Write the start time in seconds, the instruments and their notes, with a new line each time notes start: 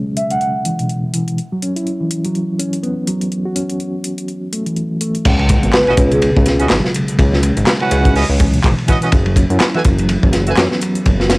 Already playing: reed electric piano B2 C#3 F#3 G#3 C#4
0.17 marimba E5, closed hi-hat
0.31 marimba F#5, closed hi-hat
0.41 marimba F#5, closed hi-hat
0.65 reed electric piano E3, closed hi-hat
0.79 reed electric piano B2, closed hi-hat
0.89 closed hi-hat
1.14 reed electric piano E3, closed hi-hat
1.28 closed hi-hat
1.38 closed hi-hat
1.52 reed electric piano F#3
1.62 reed electric piano C#4, closed hi-hat
1.76 reed electric piano E4, closed hi-hat
1.87 closed hi-hat
2.01 reed electric piano E3
2.11 closed hi-hat
2.24 reed electric piano F#3, closed hi-hat
2.35 closed hi-hat
2.59 reed electric piano C#4, closed hi-hat
2.73 closed hi-hat
2.83 reed electric piano B3, closed hi-hat
3.07 reed electric piano F#3, closed hi-hat
3.21 closed hi-hat
3.32 closed hi-hat
3.45 reed electric piano F#4
3.56 reed electric piano C#4, closed hi-hat
3.70 closed hi-hat
3.80 closed hi-hat
4.04 closed hi-hat
4.18 closed hi-hat
4.28 closed hi-hat
4.53 reed electric piano A3, closed hi-hat
4.66 reed electric piano E3, closed hi-hat
4.76 closed hi-hat
5.01 reed electric piano A3, closed hi-hat
5.15 closed hi-hat
5.25 analog synth bass C#2, kick, closed hi-hat, crash, ride, impact
5.39 reed electric piano C#3, ride
5.49 reed electric piano G#3, kick, closed hi-hat, ride
5.63 analog synth bass G#1, reed electric piano B3, closed hi-hat
5.73 marimba B4, snare, clap, closed hi-hat, ride
5.87 reed electric piano B2, horn section C#4 E4 F#4 B4 D#5, ride
5.97 analog synth bass C#2, kick, closed hi-hat, ride
6.11 reed electric piano C#3, marimba G#4, closed hi-hat, ride
6.22 marimba G#4, closed hi-hat, ride
6.37 analog synth bass C#2, kick
6.46 reed electric piano G#3, snare, closed hi-hat, ride
6.60 horn section C#4 E4 F#4 B4 D#5, closed hi-hat
6.70 analog synth bass G#1, reed electric piano F#3, snare, clap, closed hi-hat, ride
6.84 snare
6.94 reed electric piano C#3, closed hi-hat, ride
7.08 closed hi-hat
7.19 analog synth bass C#2, kick, closed hi-hat, ride
7.33 reed electric piano C#4, snare
7.43 reed electric piano G#3, closed hi-hat, ride
7.57 analog synth bass G#1, closed hi-hat, ride
7.67 snare, clap, closed hi-hat, ride
7.80 horn section C#4 E4 F#4 B4 F#5, ride
7.91 analog synth bass C#2, closed hi-hat, ride
8.05 kick, closed hi-hat
8.16 horn section C#4 E4 F#4 B4 D#5, closed hi-hat, open hi-hat
8.30 analog synth bass C#2
8.40 reed electric piano E3, kick, closed hi-hat, ride
8.54 reed electric piano B2, closed hi-hat
8.64 analog synth bass G#1, kick, clap, closed hi-hat, ride
8.78 ride
8.88 reed electric piano E3, horn section C#4 E4 F#4 B4 D#5, kick, closed hi-hat, ride
9.02 horn section C#4 E4 F#4 B4 D#5, closed hi-hat
9.12 analog synth bass F#1, kick, closed hi-hat, ride
9.26 reed electric piano F#3, ride
9.36 reed electric piano C#4, kick, closed hi-hat, ride
9.50 analog synth bass F#2, reed electric piano E4, closed hi-hat
9.60 snare, clap, closed hi-hat, ride
9.74 reed electric piano E3, horn section F#4 A4 B4 E5 G#5, ride
9.85 analog synth bass F#1, kick, closed hi-hat, ride
9.99 reed electric piano F#3, closed hi-hat, ride
10.09 closed hi-hat, ride
10.23 analog synth bass F#1, kick
10.33 reed electric piano C#4, snare, closed hi-hat, ride
10.47 horn section F#4 A4 B4 E5 G#5, closed hi-hat
10.57 analog synth bass F#2, reed electric piano B3, snare, clap, closed hi-hat, ride
10.71 snare
10.81 reed electric piano F#3, closed hi-hat, ride
10.95 closed hi-hat
11.06 analog synth bass F#1, kick, closed hi-hat, ride
11.20 reed electric piano F#4, snare
11.30 reed electric piano C#4, snare, closed hi-hat, ride